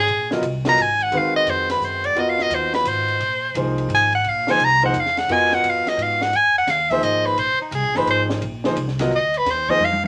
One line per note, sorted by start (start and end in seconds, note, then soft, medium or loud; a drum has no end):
0.00 0.30 G#4 medium
0.07 0.41 A#1 medium
0.07 ride medium
0.31 0.42 F#3 medium
0.31 0.42 B3 medium
0.31 0.42 F4 medium
0.31 0.42 A#4 medium
0.31 0.42 D#5 medium
0.31 snare medium
0.41 0.76 C2 medium
0.41 hi-hat pedal soft
0.41 ride medium
0.65 0.76 F#3 medium
0.65 0.77 B3 medium
0.65 0.77 F4 medium
0.65 0.77 A#4 medium
0.65 0.77 D#5 medium
0.65 0.83 A#5 loud
0.65 snare medium
0.65 ride soft
0.77 1.11 G#1 medium
0.77 hi-hat pedal medium
0.77 ride medium
0.82 1.04 G#5 medium
1.00 1.19 F#5 loud
1.00 ride soft
1.11 1.45 D#2 medium
1.11 2.09 D#3 medium
1.11 2.09 G#3 medium
1.11 2.10 C4 medium
1.11 2.10 F#4 medium
1.11 2.10 B4 medium
1.11 ride medium
1.17 1.36 F5 medium
1.36 1.52 D#5 loud
1.46 1.80 F2 loud
1.46 hi-hat pedal medium
1.46 ride medium
1.50 1.71 C5 medium
1.69 1.86 B4 medium
1.69 snare soft
1.69 ride medium
1.80 2.14 F#2 medium
1.80 hi-hat pedal medium
1.85 2.07 C5 medium
2.04 2.21 D5 medium
2.04 ride soft
2.15 2.49 F2 medium
2.15 3.14 B3 medium
2.15 3.14 F4 medium
2.15 3.13 F#4 medium
2.15 3.14 A#4 medium
2.15 3.14 D#5 medium
2.15 ride medium
2.20 2.31 D#5 medium
2.30 2.44 F5 medium
2.39 2.56 D#5 medium
2.39 snare soft
2.50 2.83 D#2 loud
2.50 hi-hat pedal medium
2.50 ride medium
2.55 2.74 C5 medium
2.74 2.90 B4 medium
2.74 snare medium
2.74 ride soft
2.84 3.19 G#1 medium
2.84 3.56 C5 medium
2.84 hi-hat pedal medium
2.84 ride medium
3.08 ride soft
3.20 3.54 A#1 medium
3.20 ride medium
3.54 3.88 C2 loud
3.54 4.08 F3 medium
3.54 4.09 A#3 medium
3.54 4.09 D#4 medium
3.54 4.09 G#4 medium
3.54 4.09 C5 medium
3.54 hi-hat pedal soft
3.54 ride medium
3.78 ride soft
3.89 4.23 G#1 loud
3.89 ride medium
3.95 4.14 G#5 medium
4.13 4.30 F#5 loud
4.13 ride soft
4.24 4.58 A#1 medium
4.24 ride medium
4.29 4.52 F5 medium
4.47 4.59 F3 medium
4.47 4.59 A#3 medium
4.47 4.59 D#4 medium
4.47 4.59 G#4 medium
4.47 4.59 C5 medium
4.47 4.66 G#5 loud
4.47 snare medium
4.59 4.92 C2 loud
4.59 hi-hat pedal medium
4.59 ride medium
4.65 4.85 A#5 loud
4.82 4.93 F3 medium
4.82 4.93 A#3 medium
4.82 4.93 D#4 medium
4.82 4.93 G#4 medium
4.82 4.94 C5 medium
4.82 5.01 F#5 loud
4.82 ride soft
4.93 5.27 E2 loud
4.93 hi-hat pedal medium
4.93 ride medium
5.00 5.20 F5 medium
5.06 snare soft
5.17 5.34 F#5 loud
5.17 snare soft
5.17 ride soft
5.28 5.62 F2 medium
5.28 6.27 B3 medium
5.28 6.27 F4 medium
5.28 6.27 F#4 medium
5.28 6.27 A#4 medium
5.28 6.27 D#5 medium
5.28 ride medium
5.33 5.56 G#5 loud
5.52 5.71 F#5 loud
5.52 snare soft
5.63 5.74 F#2 loud
5.63 hi-hat pedal medium
5.63 ride medium
5.69 5.90 F5 medium
5.74 5.85 F2 medium
5.85 5.97 D#2 medium
5.85 6.04 D#5 medium
5.85 snare soft
5.85 ride medium
5.97 6.32 G#2 loud
5.97 ride medium
6.03 6.24 F5 medium
6.21 6.38 F#5 loud
6.21 snare medium
6.33 6.66 F2 medium
6.33 6.58 G#5 loud
6.33 ride medium
6.58 6.72 F#5 loud
6.67 7.01 D#2 loud
6.67 6.92 F5 medium
6.67 snare soft
6.67 hi-hat pedal medium
6.67 ride medium
6.90 7.35 F3 medium
6.90 7.35 A#3 medium
6.90 7.36 D#4 medium
6.90 7.36 G#4 medium
6.90 7.36 C5 medium
6.90 7.05 E5 medium
6.90 kick medium
6.90 ride soft
7.01 7.36 G#1 medium
7.01 7.27 D#5 medium
7.01 hi-hat pedal medium
7.01 ride medium
7.26 7.41 B4 medium
7.36 7.58 A#1 medium
7.36 7.61 C5 medium
7.36 ride medium
7.59 7.76 D#4 soft
7.59 muted upright bass stroke soft
7.71 7.83 C2 loud
7.71 7.98 G#4 medium
7.71 hi-hat pedal medium
7.71 ride medium
7.83 7.94 A#1 soft
7.95 8.05 G#1 medium
7.95 8.40 F3 medium
7.95 8.40 A#3 medium
7.95 8.40 D#4 medium
7.95 8.40 G#4 medium
7.95 8.08 B4 medium
7.95 8.41 C5 medium
7.95 snare soft
8.06 8.40 G#1 medium
8.06 hi-hat pedal medium
8.06 ride medium
8.11 8.23 C5 medium
8.30 snare medium
8.41 8.75 A#1 medium
8.41 ride medium
8.64 8.75 F3 medium
8.64 8.76 A#3 medium
8.64 8.76 D#4 medium
8.64 8.76 G#4 medium
8.64 8.76 C5 medium
8.64 snare medium
8.76 9.10 C2 loud
8.76 hi-hat pedal medium
8.76 ride medium
8.88 snare soft
8.99 9.10 F#3 medium
8.99 9.11 B3 medium
8.99 9.11 F4 medium
8.99 9.11 A#4 medium
8.99 9.11 D#5 medium
8.99 snare soft
8.99 ride medium
9.11 9.44 D2 loud
9.11 hi-hat pedal medium
9.16 9.39 D#5 medium
9.34 9.52 B4 loud
9.34 ride soft
9.45 9.79 D#2 medium
9.45 snare soft
9.45 ride medium
9.51 9.71 C5 medium
9.68 9.80 F3 medium
9.68 9.80 A#3 medium
9.68 9.80 D#4 medium
9.68 9.80 G#4 medium
9.68 9.80 C5 medium
9.68 9.86 D#5 loud
9.68 kick medium
9.79 10.07 F2 loud
9.79 high tom medium
9.85 10.05 F5 medium
9.92 high tom medium
10.04 high tom medium